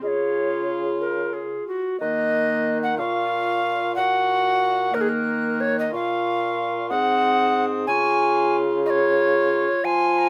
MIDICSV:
0, 0, Header, 1, 5, 480
1, 0, Start_track
1, 0, Tempo, 655022
1, 13, Time_signature, 6, 3, 24, 8
1, 7541, End_track
2, 0, Start_track
2, 0, Title_t, "Flute"
2, 0, Program_c, 0, 73
2, 22, Note_on_c, 0, 75, 66
2, 56, Note_on_c, 0, 73, 72
2, 63, Note_off_c, 0, 75, 0
2, 717, Note_off_c, 0, 73, 0
2, 1474, Note_on_c, 0, 90, 77
2, 2193, Note_on_c, 0, 85, 61
2, 2204, Note_off_c, 0, 90, 0
2, 2908, Note_off_c, 0, 85, 0
2, 2912, Note_on_c, 0, 85, 80
2, 3627, Note_on_c, 0, 90, 68
2, 3638, Note_off_c, 0, 85, 0
2, 4335, Note_off_c, 0, 90, 0
2, 4340, Note_on_c, 0, 85, 76
2, 5059, Note_on_c, 0, 87, 71
2, 5070, Note_off_c, 0, 85, 0
2, 5775, Note_off_c, 0, 87, 0
2, 5779, Note_on_c, 0, 85, 84
2, 6280, Note_off_c, 0, 85, 0
2, 6490, Note_on_c, 0, 85, 70
2, 7186, Note_off_c, 0, 85, 0
2, 7217, Note_on_c, 0, 84, 87
2, 7461, Note_on_c, 0, 82, 75
2, 7472, Note_off_c, 0, 84, 0
2, 7541, Note_off_c, 0, 82, 0
2, 7541, End_track
3, 0, Start_track
3, 0, Title_t, "Recorder"
3, 0, Program_c, 1, 74
3, 12, Note_on_c, 1, 68, 51
3, 663, Note_off_c, 1, 68, 0
3, 740, Note_on_c, 1, 70, 66
3, 977, Note_on_c, 1, 68, 51
3, 988, Note_off_c, 1, 70, 0
3, 1223, Note_off_c, 1, 68, 0
3, 1229, Note_on_c, 1, 66, 60
3, 1461, Note_off_c, 1, 66, 0
3, 1465, Note_on_c, 1, 75, 99
3, 2040, Note_off_c, 1, 75, 0
3, 2073, Note_on_c, 1, 78, 79
3, 2180, Note_off_c, 1, 78, 0
3, 2184, Note_on_c, 1, 77, 104
3, 2891, Note_off_c, 1, 77, 0
3, 2900, Note_on_c, 1, 78, 113
3, 3622, Note_on_c, 1, 70, 91
3, 3633, Note_off_c, 1, 78, 0
3, 3672, Note_on_c, 1, 68, 79
3, 3683, Note_off_c, 1, 70, 0
3, 3729, Note_on_c, 1, 70, 89
3, 3740, Note_off_c, 1, 68, 0
3, 4107, Note_on_c, 1, 73, 100
3, 4118, Note_off_c, 1, 70, 0
3, 4226, Note_off_c, 1, 73, 0
3, 4243, Note_on_c, 1, 75, 76
3, 4351, Note_off_c, 1, 75, 0
3, 4356, Note_on_c, 1, 77, 111
3, 5049, Note_off_c, 1, 77, 0
3, 5053, Note_on_c, 1, 78, 113
3, 5604, Note_off_c, 1, 78, 0
3, 5768, Note_on_c, 1, 80, 115
3, 6274, Note_off_c, 1, 80, 0
3, 6491, Note_on_c, 1, 75, 109
3, 6523, Note_on_c, 1, 73, 119
3, 6530, Note_off_c, 1, 75, 0
3, 7215, Note_on_c, 1, 80, 118
3, 7226, Note_off_c, 1, 73, 0
3, 7541, Note_off_c, 1, 80, 0
3, 7541, End_track
4, 0, Start_track
4, 0, Title_t, "Viola"
4, 0, Program_c, 2, 41
4, 12, Note_on_c, 2, 65, 49
4, 1321, Note_off_c, 2, 65, 0
4, 1471, Note_on_c, 2, 58, 63
4, 2163, Note_off_c, 2, 58, 0
4, 2192, Note_on_c, 2, 65, 58
4, 2910, Note_on_c, 2, 66, 61
4, 2921, Note_off_c, 2, 65, 0
4, 3617, Note_off_c, 2, 66, 0
4, 3622, Note_on_c, 2, 58, 68
4, 4328, Note_off_c, 2, 58, 0
4, 4345, Note_on_c, 2, 65, 59
4, 5057, Note_on_c, 2, 60, 66
4, 5068, Note_off_c, 2, 65, 0
4, 5776, Note_on_c, 2, 65, 70
4, 5787, Note_off_c, 2, 60, 0
4, 6487, Note_off_c, 2, 65, 0
4, 6492, Note_on_c, 2, 65, 74
4, 7201, Note_off_c, 2, 65, 0
4, 7221, Note_on_c, 2, 65, 78
4, 7541, Note_off_c, 2, 65, 0
4, 7541, End_track
5, 0, Start_track
5, 0, Title_t, "Bassoon"
5, 0, Program_c, 3, 70
5, 16, Note_on_c, 3, 49, 56
5, 1205, Note_off_c, 3, 49, 0
5, 1474, Note_on_c, 3, 51, 78
5, 2194, Note_on_c, 3, 46, 66
5, 2205, Note_off_c, 3, 51, 0
5, 2906, Note_off_c, 3, 46, 0
5, 2911, Note_on_c, 3, 46, 69
5, 3630, Note_on_c, 3, 51, 68
5, 3641, Note_off_c, 3, 46, 0
5, 4343, Note_off_c, 3, 51, 0
5, 4347, Note_on_c, 3, 46, 78
5, 5060, Note_on_c, 3, 44, 69
5, 5071, Note_off_c, 3, 46, 0
5, 5770, Note_off_c, 3, 44, 0
5, 5774, Note_on_c, 3, 49, 88
5, 7091, Note_off_c, 3, 49, 0
5, 7216, Note_on_c, 3, 53, 75
5, 7541, Note_off_c, 3, 53, 0
5, 7541, End_track
0, 0, End_of_file